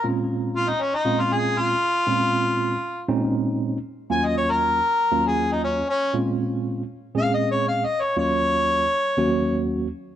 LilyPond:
<<
  \new Staff \with { instrumentName = "Harmonica" } { \time 4/4 \key bes \minor \tempo 4 = 118 r4 f'16 ees'16 des'16 ees'8 f'16 aes'8 f'4~ | f'2 r2 | aes''16 ees''16 des''16 bes'4. aes'8 ees'16 des'8 des'8 | r2 \tuplet 3/2 { f''8 ees''8 des''8 f''8 ees''8 des''8 } |
des''2. r4 | }
  \new Staff \with { instrumentName = "Tine electric piano" } { \time 4/4 \key bes \minor <bes, aes c' des' f'>4. r8 <bes, aes c' des' f'>4. r8 | <bes, aes c' des' f'>4. r8 <bes, aes c' des' ees'>4. r8 | <ees, ges bes des' f'>4. r8 <ees, ges bes des' f'>4. r8 | <bes, aes c' des' f'>4. r8 <bes, aes c' des' aes'>4. r8 |
<ees, ges bes des' f'>4. r8 <ees, ges bes des' ges'>4. r8 | }
>>